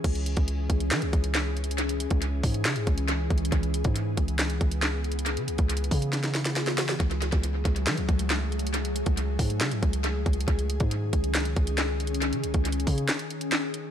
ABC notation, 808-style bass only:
X:1
M:4/4
L:1/16
Q:1/4=138
K:C#m
V:1 name="808-style bass" clef=bass
C,,3 C,,3 C,,2 E, C,, C,,6- | C,,3 C,,3 G,,2 C, G,, C,,4 C,,2 | C,,3 G,,3 C,,4 C,,6- | C,, C, C,, C,,3 C,8- C,2 |
C,,3 C,,3 C,,2 E, C,, C,,6- | C,,3 C,,3 G,,2 C, G,, C,,4 C,,2 | C,,3 G,,3 C,,4 C,,6- | C,, C, C,, C,,3 C,2 z8 |]